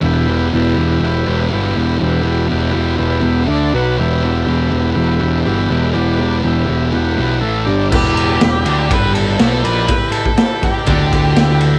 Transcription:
<<
  \new Staff \with { instrumentName = "Lead electric guitar" } { \time 4/4 \key e \minor \tempo 4 = 122 r1 | r1 | r1 | r1 |
g'2 b'8 a'4 b'8~ | b'8 a'8 a'8 g'2 r8 | }
  \new Staff \with { instrumentName = "Transistor combo organ" } { \time 4/4 \key e \minor <e' g' b'>4 <e' g' b'>4 <e' g' b'>4 <e' g' b'>4 | <e' g' b'>4 <e' g' b'>4 <e' g' b'>4 <d' a' d''>8 <fis' b' fis''>8 | <g' b' e''>4 <g' b' e''>4 <g' b' e''>4 <g' b' e''>4 | <g' b' d''>4 <g' b' e''>4 <g' b' fis''>4 <e' a' e''>8 <d' g' d''>8 |
<e' g' b'>4 <e' g' b'>4 <e' g' b'>8 <e' g' b'>8 <e' g' d''>4 | <e' g' b'>4 <e' g' b'>4 <e' g' a'>8 <e' g' b'>8 <e' g' b'>4 | }
  \new Staff \with { instrumentName = "Distorted electric guitar" } { \clef bass \time 4/4 \key e \minor <e, b, e>8 <e, b, e>8 <e, b, e>8 <e, b, e>8 <e, b, e>8 <e, b, e>8 <e, b, e>8 <e, b, e>8 | <e, b, e>8 <e, b, e>8 <e, b, e>8 <e, b, e>8 <e, b, e>8 <e, b, e>8 <d a d'>8 <b, fis b>8 | <e, b, e>8 <e, b, e>8 <e, b, e>8 <e, b, e>8 <e, b, e>8 <e, b, e>8 <e, b, e>8 <e, b, e>8 | <e, b, e>8 <e, b, e>8 <e, b, e>8 <e, b, e>8 <e, b, e>8 <e, b, e>8 <a, e a>8 <g, d g>8 |
<e, e>4 e,8 <d d'>8 <g, g>4 <b, b>8 <ais, ais>8 | r2 <d d'>2 | }
  \new Staff \with { instrumentName = "Picked electric bass" } { \clef bass \time 4/4 \key e \minor e,,4 e,,8 e,,8 e,,8 e,,8 g,,8 e,,8 | e,,4 e,,8 e,,8 e,,8 e,,8 d,8 b,,8 | e,,4 e,,8 e,,8 e,,8 e,,8 g,,8 e,,8 | e,,4 e,,8 e,,8 e,,8 b,,8 a,,8 g,,8 |
e,,4 e,,8 d,8 g,,4 b,,8 ais,,8 | r2 d,2 | }
  \new DrumStaff \with { instrumentName = "Drums" } \drummode { \time 4/4 r4 r4 r4 r4 | r4 r4 r4 r4 | r4 r4 r4 r4 | r4 r4 r4 r4 |
<cymc bd>8 cymr8 <cymr sn>8 cymr8 <bd cymr>8 cymr8 <cymr sn>8 cymr8 | <bd cymr>8 cymr16 bd16 <cymr sn>8 <bd cymr>8 <bd cymr>8 <bd cymr>8 <cymr sn>8 cymr8 | }
>>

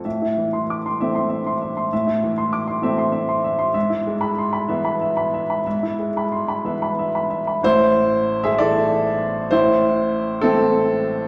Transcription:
<<
  \new Staff \with { instrumentName = "Upright piano" } { \time 6/8 \key a \minor \tempo 4. = 65 e''16 e'16 e16 c'''16 d'''16 c'''16 e''16 c'''16 e''16 c'''16 e''16 c'''16 | e''16 e'16 e16 c'''16 d'''16 c'''16 e''16 c'''16 e''16 c'''16 e''16 c'''16 | e''16 e'16 gis16 b''16 c'''16 b''16 e''16 b''16 e''16 b''16 e''16 b''16 | e''16 e'16 gis16 b''16 c'''16 b''16 e''16 b''16 e''16 b''16 e''16 b''16 |
<e' c''>4~ <e' c''>16 <gis' e''>16 <a' d''>4. | <e' c''>4. <c' a'>4. | }
  \new Staff \with { instrumentName = "Upright piano" } { \clef bass \time 6/8 \key a \minor a,4. <e a c'>4. | a,4. <e a c'>4. | gis,4. <e b>4. | gis,4. <e b>4. |
<a,, a,>4. <e a e'>4. | <a,, a,>4. <e a e'>4. | }
>>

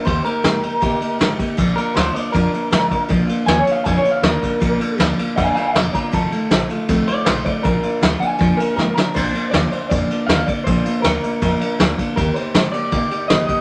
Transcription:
<<
  \new Staff \with { instrumentName = "Clean electric guitar" } { \time 4/4 \key bes \mixolydian \tempo 4 = 159 << { c''8 bes'2. r8 | r8 bes'8 c''8 d''8 bes'2 | r4 \tuplet 3/2 { aes''8 des''8 f''8 aes''8 des''8 f''8 } bes'4~ | bes'4 r4 <f'' aes''>8 <f'' aes''>8 <d'' bes''>8 <d'' bes''>8 |
a''2 r8 d''8 c''8 d''8 | bes'4 r8 aes''4. bes''8 bes''8 | r1 | r1 |
r1 | } \\ { r1 | r1 | r1 | r1 |
r1 | r2 r8 bes'8 bes'4 | c''4 d''8 c''8 d''4 f''8 d''8 | c''4 bes'2~ bes'8 r8 |
bes'8 c''4 d''4. ees''8 ees''8 | } >> }
  \new Staff \with { instrumentName = "Steel-string acoustic guitar" } { \time 4/4 \key bes \mixolydian <ees bes ees' g'>8 <bes ees' g'>8 <ees bes ees' g'>8 <bes ees' g'>8 <ees bes ees' g'>8 <bes ees' g'>8 <ees bes ees' g'>8 <bes ees' g'>8 | <bes, f bes d' f'>8 <bes d' f'>8 <f bes d' f'>8 <bes d' f'>8 <bes, f bes d' f'>8 <bes d' f'>8 <f bes d' f'>8 <bes d' f'>8 | <bes, f bes d' f'>8 <bes d' f'>8 <f bes d' f'>8 <bes d' f'>8 <bes, f bes d' f'>8 <bes d' f'>8 <f bes d' f'>8 <bes d' f'>8 | <bes, f bes d' f'>8 <bes d' f'>8 <f bes d' f'>8 <bes d' f'>8 <bes, f bes d' f'>8 <bes d' f'>8 <f bes d' f'>8 <bes d' f'>8 |
<f, c ees a ees' f'>8 <ees a ees' f'>8 <ees a ees' f'>8 <ees a ees' f'>8 <f, c ees a ees' f'>8 <ees a ees' f'>8 <ees a ees' f'>8 <ees a ees' f'>8 | <bes, f bes d' f'>8 <bes d' f'>8 <f bes d' f'>8 <bes d' f'>8 <bes, f bes d' f'>8 <bes d' f'>8 <f bes d' f'>8 <bes d' f'>8 | <bes, f bes d' f'>8 <bes d' f'>8 <f bes d' f'>8 <bes d' f'>8 <bes, f bes d' f'>8 <bes d' f'>8 <f bes d' f'>8 <bes d' f'>8 | <bes, f bes d' f'>8 <bes d' f'>8 <f bes d' f'>8 <bes d' f'>8 <bes, f bes d' f'>8 <bes d' f'>8 <f bes d' f'>8 <bes d' f'>8 |
<ees bes ees' g'>8 <bes ees' g'>8 <ees bes ees' g'>8 <bes ees' g'>8 <ees bes ees' g'>8 <bes ees' g'>8 <ees bes ees' g'>8 <bes ees' g'>8 | }
  \new Staff \with { instrumentName = "Upright bass" } { \clef bass \time 4/4 \key bes \mixolydian ees,8 r8 aes,8 r8 bes,8 r8 aes,8 r8 | bes,,8 r8 d,8 r8 f,8 r8 aes,8 r8 | bes,,8 r8 ees,8 r8 f,8 r8 ees,8 r8 | bes,,8 r8 d,8 r8 f,8 r8 e,,8 r8 |
f,,8 r8 bes,,8 r8 c,8 r8 bes,,8 r8 | bes,,8 r8 d,8 r8 f,8 r8 aes,8 r8 | bes,,8 r8 ees,8 r8 f,8 r8 ees,8 r8 | bes,,8 r8 d,8 r8 f,8 r8 d,8 r8 |
ees,8 r8 aes,8 r8 bes,8 r8 aes,,8 r8 | }
  \new DrumStaff \with { instrumentName = "Drums" } \drummode { \time 4/4 <bd cymr>8 cymr8 <cymr sn>8 cymr8 <bd cymr>8 cymr8 <cymr sn>8 <bd cymr>8 | <bd cymr>8 cymr8 <cymr sn>8 cymr8 <bd cymr>8 cymr8 <cymr sn>8 <bd cymr>8 | <bd cymr>8 cymr8 <cymr sn>8 cymr8 <bd cymr>8 cymr8 <cymr sn>8 <bd cymr>8 | <bd cymr>8 cymr8 <cymr sn>8 cymr8 <bd cymr>8 cymr8 <cymr sn>8 <bd cymr>8 |
<bd cymr>8 cymr8 <cymr sn>8 cymr8 <bd cymr>8 cymr8 <cymr sn>8 <bd cymr>8 | <bd cymr>8 cymr8 <cymr sn>8 cymr8 <bd cymr>8 cymr8 sn8 sn8 | <cymc bd>8 cymr8 <cymr sn>8 cymr8 <bd cymr>8 cymr8 <cymr sn>8 <bd cymr>8 | <bd cymr>8 cymr8 <cymr sn>8 cymr8 <bd cymr>8 cymr8 <cymr sn>8 <bd cymr>8 |
<bd cymr>8 cymr8 <cymr sn>8 cymr8 <bd cymr>8 cymr8 <cymr sn>8 <bd cymr>8 | }
>>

